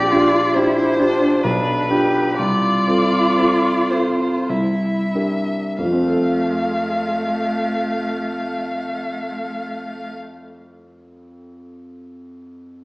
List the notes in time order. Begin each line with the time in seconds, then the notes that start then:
Already playing: A#1 G4 D5
0.10 D4 F4 G4
0.55 D4 E4 F4 G4 C5
0.99 D4 F4 G4
1.44 B1 D4 B4
1.90 D4 F4 G4
2.37 C2 F4 D5
2.87 C4 F4 A4
3.36 C4 F4 A4
3.90 C4 F4 A4 C5
4.49 C2 E4 E5
5.14 D4 G4 A#4
5.78 F2 A3 F5
5.85 F3
5.92 C4
5.99 F4
6.07 A4
6.14 F5